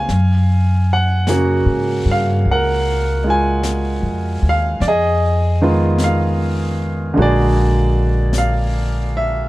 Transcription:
Already playing: C#3 A3 B3 F4 F5 G#5
0.09 F#2, brush sweep, snare
0.93 F#5
1.27 C#3 A#3 F#4 G#4, brush sweep, snare, hi-hat pedal
1.66 G#2
2.05 G2
2.11 F5
2.45 C#2, brush sweep
2.51 A#4 F#5
3.24 G#3 F4
3.30 G#5
3.63 brush sweep, snare, hi-hat pedal
4.02 F2
4.42 D#2
4.49 F5
4.80 F2 D5, brush sweep, snare
4.88 G#4 D#5
5.62 D#3 G#3 B3 F4
5.98 brush sweep, snare, hi-hat pedal
6.04 F5
7.14 A#1 D3 G#3 A#3, brush sweep
7.19 F#4 G#4 D5
8.33 brush sweep, snare, hi-hat pedal
8.38 F5
9.17 E5

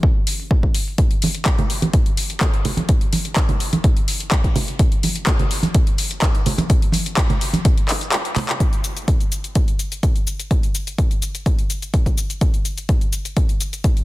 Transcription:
0.03 kick
0.27 open hi-hat, maracas
0.39 maracas
0.51 kick
0.63 kick
0.74 open hi-hat, maracas
0.87 maracas
0.98 kick, closed hi-hat
1.11 closed hi-hat
1.22 open hi-hat, high conga, maracas
1.35 closed hi-hat, maracas
1.46 kick, clap, closed hi-hat
1.58 closed hi-hat, low conga
1.70 open hi-hat, maracas
1.82 closed hi-hat, high conga, maracas
1.94 kick, closed hi-hat
2.06 closed hi-hat
2.17 open hi-hat, maracas
2.30 closed hi-hat, maracas
2.41 kick, clap, closed hi-hat
2.54 closed hi-hat
2.65 open hi-hat, low conga, maracas
2.77 closed hi-hat, high conga, maracas
2.89 kick, closed hi-hat
3.01 closed hi-hat
3.13 open hi-hat, high conga, maracas
3.25 closed hi-hat, maracas
3.36 kick, clap, closed hi-hat
3.49 closed hi-hat, low conga
3.60 open hi-hat, maracas
3.73 closed hi-hat, high conga, maracas
3.84 kick, closed hi-hat
3.97 closed hi-hat
4.08 open hi-hat, maracas
4.20 closed hi-hat, maracas
4.32 kick, clap, closed hi-hat
4.44 kick, closed hi-hat
4.55 open hi-hat, low conga, maracas
4.68 closed hi-hat, maracas
4.79 kick, closed hi-hat
4.92 closed hi-hat
5.03 open hi-hat, high conga, maracas
5.16 closed hi-hat, maracas
5.27 kick, clap, closed hi-hat
5.39 closed hi-hat, low conga
5.51 open hi-hat, maracas
5.63 closed hi-hat, high conga, maracas
5.75 kick, closed hi-hat
5.87 closed hi-hat
5.98 open hi-hat, maracas
6.11 closed hi-hat, maracas
6.22 kick, clap, closed hi-hat
6.35 closed hi-hat
6.46 open hi-hat, low conga, maracas
6.58 closed hi-hat, high conga, maracas
6.69 kick, closed hi-hat, maracas
6.82 closed hi-hat
6.92 open hi-hat, high conga, maracas
7.06 closed hi-hat, maracas
7.17 kick, clap, closed hi-hat
7.30 closed hi-hat, low conga
7.41 open hi-hat, maracas
7.53 closed hi-hat, high conga, maracas
7.65 kick, closed hi-hat, maracas
7.78 closed hi-hat
7.89 clap, open hi-hat, maracas
8.01 closed hi-hat, maracas
8.12 clap, closed hi-hat, maracas
8.25 closed hi-hat
8.36 clap, open hi-hat, low conga, maracas
8.49 clap, closed hi-hat, maracas
8.60 kick, closed hi-hat, cabasa
8.73 closed hi-hat, cabasa
8.84 closed hi-hat, cabasa
8.97 closed hi-hat, cabasa
9.08 kick, closed hi-hat, cabasa
9.20 closed hi-hat, cabasa
9.32 closed hi-hat, cabasa
9.44 closed hi-hat, cabasa
9.55 kick, closed hi-hat, cabasa
9.68 closed hi-hat, cabasa
9.79 closed hi-hat, cabasa
9.92 closed hi-hat, cabasa
10.03 kick, closed hi-hat, cabasa
10.16 closed hi-hat, cabasa
10.27 closed hi-hat, cabasa
10.40 closed hi-hat, cabasa
10.51 kick, closed hi-hat, cabasa
10.63 closed hi-hat, cabasa
10.75 closed hi-hat, cabasa
10.87 closed hi-hat, cabasa
10.98 kick, closed hi-hat, cabasa
11.11 closed hi-hat, cabasa
11.22 closed hi-hat, cabasa
11.35 closed hi-hat, cabasa
11.46 kick, closed hi-hat, cabasa
11.59 closed hi-hat, cabasa
11.70 closed hi-hat, cabasa
11.82 closed hi-hat, cabasa
11.94 kick, closed hi-hat, cabasa
12.06 kick, closed hi-hat, cabasa
12.18 closed hi-hat, cabasa
12.30 closed hi-hat, cabasa
12.41 kick, closed hi-hat, cabasa
12.54 closed hi-hat, cabasa
12.65 closed hi-hat, cabasa
12.78 closed hi-hat, cabasa
12.89 kick, closed hi-hat, cabasa
13.01 closed hi-hat, cabasa
13.13 closed hi-hat, cabasa
13.25 closed hi-hat, cabasa
13.37 kick, closed hi-hat, cabasa
13.49 closed hi-hat, cabasa
13.61 closed hi-hat, cabasa
13.73 closed hi-hat, cabasa
13.84 kick, closed hi-hat, cabasa
13.97 closed hi-hat, cabasa

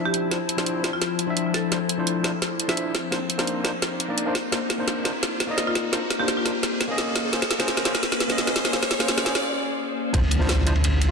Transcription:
Already playing: F3 C4 D4 E4 C5 E5, riser
0.06 G4
0.14 closed hi-hat
0.30 F3 D4 E4 C5, snare, closed hi-hat
0.49 closed hi-hat
0.57 F3 D4 E4 C5, snare
0.66 closed hi-hat
0.83 F3 D4 E4 C5, snare, closed hi-hat
0.93 F4
1.02 snare, closed hi-hat
1.19 closed hi-hat
1.26 F3 D4 E4 E5
1.37 closed hi-hat
1.54 A4, snare, closed hi-hat
1.71 F3 D4 E4 C5, snare, closed hi-hat
1.89 closed hi-hat
1.98 F3 D4 E4 C5
2.07 closed hi-hat
2.23 F3 D4 E4 C5, snare, closed hi-hat
2.42 snare, closed hi-hat
2.60 closed hi-hat
2.68 F3 D4 E4 E5, snare
2.77 closed hi-hat
2.95 A#3 D#4, snare, closed hi-hat
3.11 A#3 D4 D#4 C5, snare, closed hi-hat
3.30 closed hi-hat
3.38 A#3 D4 D#4 C5, snare
3.47 closed hi-hat
3.64 A#3 D4 D#4 C5, snare, closed hi-hat
3.82 snare, closed hi-hat
4.00 closed hi-hat
4.08 A#3 D4 D#4 D5
4.18 closed hi-hat
4.26 A#3 D4 D#4 C5
4.35 snare, closed hi-hat
4.51 A#3 D4 D#4 C5, snare, closed hi-hat
4.70 snare, closed hi-hat
4.78 A#3 D4 D#4 C5
4.88 snare, closed hi-hat
5.04 A#3 D4 D#4 C5, snare, closed hi-hat
5.23 snare, closed hi-hat
5.40 snare, closed hi-hat
5.47 A#3 D#4 D5 D#5
5.58 snare, closed hi-hat
5.67 F4
5.75 snare, closed hi-hat
5.92 A#3 D4 D#4 C5, snare, closed hi-hat
6.10 snare, closed hi-hat
6.19 A#3 D4 D#4 G4 C5
6.28 snare, closed hi-hat
6.37 F4
6.45 A#3 D4 D#4 C5, snare, closed hi-hat
6.63 C#4 G#4, snare, closed hi-hat
6.81 snare, closed hi-hat
6.88 A#3 C#4 G#4 D#5
6.98 snare, closed hi-hat
7.16 snare, closed hi-hat
7.32 A#3 C#4 G#4 C5, snare, closed hi-hat
7.42 snare
7.51 snare, closed hi-hat
7.59 A#3 C#4 G#4 C5, snare
7.68 snare, closed hi-hat
7.77 snare
7.85 A#3 C#4 G#4 C5, snare, closed hi-hat
7.95 snare
8.03 snare, closed hi-hat
8.12 snare
8.20 snare, closed hi-hat
8.28 A#3 C#4 G#4 D#5, snare
8.38 snare, closed hi-hat
8.47 snare
8.56 snare, closed hi-hat
8.65 snare
8.72 A#3 C#4 G#4 C5, snare, closed hi-hat
8.83 snare
8.91 snare, closed hi-hat
8.99 A#3 C#4 G#4 C5, snare
9.08 snare, closed hi-hat
9.18 snare
9.25 A#3 C#4 G#4 C5, snare, closed hi-hat
9.35 snare
10.13 D2 D3 F3 C4 D4 E4 C5, kick, closed hi-hat, ride, impact
10.31 closed hi-hat, ride
10.39 F3 D4 E4 C5, snare
10.49 snare, closed hi-hat, ride
10.58 snare
10.65 F3 D4 E4 C5, closed hi-hat, ride
10.75 ride
10.84 closed hi-hat, ride
11.01 closed hi-hat, ride

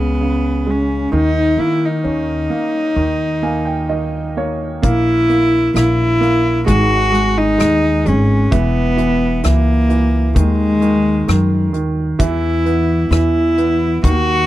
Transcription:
Already playing: C#2 C#3 G#3 B3
0.21 C#3
0.66 G#3
0.71 C#4
1.12 D#2 D#3 D#4
1.57 D#3 A#3 E4
1.85 D#4
2.04 D#2 C#4
2.50 A#3
2.96 D#2 D#3
3.42 A#3 G#5
3.65 G5
3.89 D#3 D#5
4.37 A#3 C#5
4.82 A#1 A#3 E4, kick, closed hi-hat
5.29 A#3, closed hi-hat
5.74 A#1 A#3 E4, cross-stick, closed hi-hat
6.21 A#3, closed hi-hat
6.66 G#1 G#3 F#4, kick, closed hi-hat
7.12 G#3, closed hi-hat
7.38 D#4
7.58 D#2 G#3, cross-stick, closed hi-hat
8.05 G#1 G#3 C#4, closed hi-hat
8.51 E1 E3 B3, kick, closed hi-hat
8.97 E3, closed hi-hat
9.43 C#2 E3 A#3, cross-stick, closed hi-hat
9.89 E3, closed hi-hat
10.35 D#2 D#3 G#3, kick, closed hi-hat
10.81 D#3, closed hi-hat
11.28 F#2 D#3, cross-stick, closed hi-hat
11.73 D#2 D#3, closed hi-hat
12.19 E2 E3 E4, kick, closed hi-hat
12.66 B3, closed hi-hat
13.11 E2 E3 E4, cross-stick, closed hi-hat
13.58 B3, closed hi-hat
14.04 D#2 D#3 F#4, kick, closed hi-hat

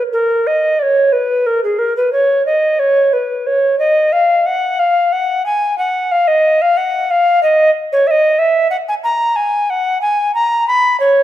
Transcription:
0.13 A#4
0.47 D#5
0.79 C#5 D5
1.13 B4
1.47 A#4
1.64 G#4
1.79 A#4
1.97 B4
2.13 C#5
2.46 D#5
2.79 C#5
3.13 B4
3.47 C#5
3.79 D#5
4.13 F5
4.46 F#5
4.79 F5
5.12 F#5
5.46 G#5
5.78 F#5
6.12 F5
6.28 D#5
6.62 F5
6.77 F#5
7.11 F5
7.43 D#5
7.93 C#5
8.07 D#5 E5
8.39 E5
8.71 F#5
8.89 G#5
9.04 A#5
9.36 G#5
9.70 F#5
10.02 G#5
10.35 A#5
10.68 B5
11.00 C#5

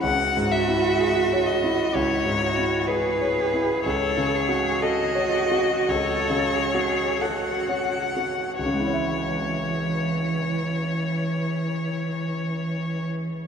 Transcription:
0.03 C#2 F#4 F#5
0.37 G#2
0.52 E5
0.68 E4
1.00 G#4
1.33 C#5
1.46 D#5
1.64 E4
1.94 C#2 E4 C#5
2.25 G#2
2.41 F#4
2.58 E4
2.87 G#4 B4
3.21 C#5
3.54 E4
3.84 C#2 A4 C#5
4.17 C#3
4.35 G#4
4.49 F#4
4.82 F#4 A4 D#5
5.15 C#5
5.52 F#4
5.88 C#2 A4 C#5
6.30 C#3
6.54 G#4
6.75 F#4
7.21 F#4 A4 F#5
7.69 C#5
8.17 F#4
8.59 C#2 E3 C#5
8.66 C#3
8.73 G#3
8.80 E4
8.87 C#5
8.94 E5

